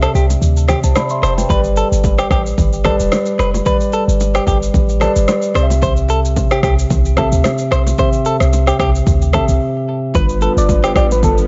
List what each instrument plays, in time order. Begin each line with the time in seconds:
Already playing: tine electric piano C3 C4 G4 D5 E5
0.02 clean electric guitar A4, cross-stick, shaker
0.15 808-style bass C2, clean electric guitar G4, shaker
0.30 high bongo, shaker
0.42 808-style bass D2, low conga, shaker
0.57 shaker
0.68 clean electric guitar G4, cross-stick, low bongo, low conga, shaker
0.84 808-style bass C2, tine electric piano C5 A5, shaker
0.96 tine electric piano D5 B5, cross-stick, high bongo, low bongo, shaker
1.09 tine electric piano E5 C6, shaker
1.23 808-style bass F1, clean electric guitar C5, tine electric piano C5 A5, cross-stick, shaker
1.38 tine electric piano B4 G5, high bongo, low bongo, shaker
1.49 808-style bass G1, tine electric piano G3 G4 B4 D5, clean electric guitar B4, kick, low conga, shaker
1.64 shaker
1.76 clean electric guitar A4, shaker
1.92 808-style bass G1, shaker
2.04 kick, high bongo, shaker
2.19 clean electric guitar G4, cross-stick, shaker
2.31 808-style bass A1, clean electric guitar G4, kick, cross-stick, shaker
2.46 shaker
2.58 808-style bass G1, kick, low conga, shaker
2.73 shaker
2.84 tine electric piano G3 G4 B4 D5, clean electric guitar A4, kick, cross-stick, low bongo, low conga, shaker
3.00 808-style bass E1, shaker
3.12 cross-stick, high bongo, low bongo, shaker
3.26 shaker
3.39 808-style bass F1, clean electric guitar B4, cross-stick, shaker
3.54 low bongo, shaker
3.65 tine electric piano G3 G4 B4 D5, clean electric guitar B4, kick, low conga, shaker
3.80 shaker
3.93 clean electric guitar A4, shaker
4.08 808-style bass G1, shaker
4.20 high bongo, shaker
4.35 clean electric guitar G4, cross-stick, shaker
4.47 808-style bass G1, clean electric guitar G4, kick, shaker
4.63 shaker
4.74 808-style bass A1, kick, low conga, shaker
4.89 shaker
5.00 tine electric piano G3 G4 B4 D5, clean electric guitar A4, cross-stick, low bongo, low conga, shaker
5.16 808-style bass G1, shaker
5.28 cross-stick, high bongo, low bongo, shaker
5.42 shaker
5.54 808-style bass C2, tine electric piano C3 C4 G4 D5, clean electric guitar C5, cross-stick, shaker
5.63 tine electric piano E5
5.70 low bongo, shaker
5.82 clean electric guitar C5, kick, low conga, shaker
5.97 shaker
6.09 clean electric guitar A4, shaker
6.25 shaker
6.36 kick, high bongo, shaker
6.51 clean electric guitar G4, cross-stick, shaker
6.63 808-style bass C2, clean electric guitar G4, kick, cross-stick, shaker
6.79 shaker
6.90 808-style bass C2, kick, low conga, shaker
7.05 shaker
7.16 tine electric piano C3 C4 G4 E5, clean electric guitar A4, kick, cross-stick, low bongo, low conga, shaker
7.32 808-style bass D2, shaker
7.44 cross-stick, high bongo, low bongo, shaker
7.58 shaker
7.72 808-style bass B1, clean electric guitar C5, cross-stick, shaker
7.87 low bongo, shaker
7.98 tine electric piano C3 C4 G4 E5, clean electric guitar C5, kick, low conga, shaker
8.13 shaker
8.25 clean electric guitar A4, shaker
8.40 808-style bass C2, cross-stick, shaker
8.53 high bongo, shaker
8.67 clean electric guitar G4, cross-stick, shaker
8.79 808-style bass C2, clean electric guitar G4, kick, cross-stick, shaker
8.95 shaker
9.07 808-style bass D2, kick, low conga, shaker
9.22 shaker
9.33 tine electric piano C3 C4 G4 E5, clean electric guitar A4, kick, cross-stick, low bongo, low conga, shaker
9.48 808-style bass C2, shaker
10.14 808-style bass G1, string section D3 F3 G3 B3, tine electric piano G3 D4 F4 B4, clean electric guitar B4, soft synth lead B4, kick, low conga, shaker
10.29 shaker
10.40 tine electric piano G3 D4 F4 B4, clean electric guitar A4, low bongo, shaker
10.57 808-style bass G1, soft synth lead D5, shaker
10.69 kick, high bongo, shaker
10.84 clean electric guitar G4, cross-stick, shaker
10.96 808-style bass A1, clean electric guitar G4, soft synth lead D5, kick, cross-stick, shaker
11.11 soft synth lead B4, high bongo, shaker
11.23 808-style bass G1, soft synth lead A4, kick, low conga, shaker
11.38 shaker